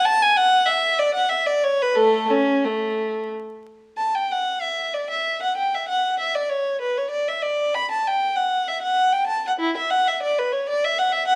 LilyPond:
\new Staff \with { instrumentName = "Violin" } { \time 3/4 \key a \major \tempo 4 = 96 a''16 gis''16 fis''8 e''8 d''16 fis''16 e''16 d''16 cis''16 b'16 | <a a'>8 cis'8 a4 r4 | \key e \dorian a''16 g''16 fis''8 e''8 d''16 e''8 fis''16 g''16 e''16 | fis''8 e''16 d''16 cis''8 b'16 cis''16 d''16 e''16 d''8 |
b''16 a''16 g''8 fis''8 e''16 fis''8 g''16 a''16 fis''16 | e'16 e''16 fis''16 e''16 d''16 b'16 cis''16 d''16 e''16 fis''16 e''16 fis''16 | }